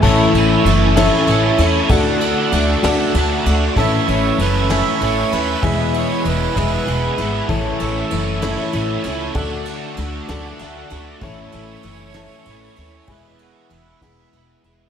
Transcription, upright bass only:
X:1
M:6/8
L:1/8
Q:3/8=64
K:A
V:1 name="Upright bass" clef=bass
A,,, A,,, F,,,2 A,,, E,, | D,,2 D,, D,, D,, D,, | A,,, A,,, F,,,2 A,,, ^D,, | E,,,2 E,,, E,,, E,,, G,,, |
A,,, A,,, F,,,2 A,,, C,, | D,,2 D,, D,, D,, D,, | A,,, A,,, F,,,2 A,,, ^D,, | E,,,2 E,,, E,,, E,,, E,,, |]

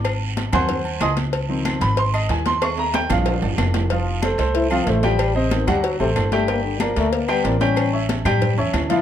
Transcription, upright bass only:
X:1
M:4/4
L:1/8
Q:1/4=186
K:Aphr
V:1 name="Upright bass" clef=bass
_A,,,3 _E,,3 _D,,2- | _D,,3 _A,,,3 _E,,2- | _E,,3 B,,,2 G,,, F,,,2- | F,,,3 C,,3 A,,,2- |
A,,,3 D,,2 A,,, G,,,2- | G,,,3 D,,3 A,,,2- | A,,,3 A,,2 E,, D,,2 |]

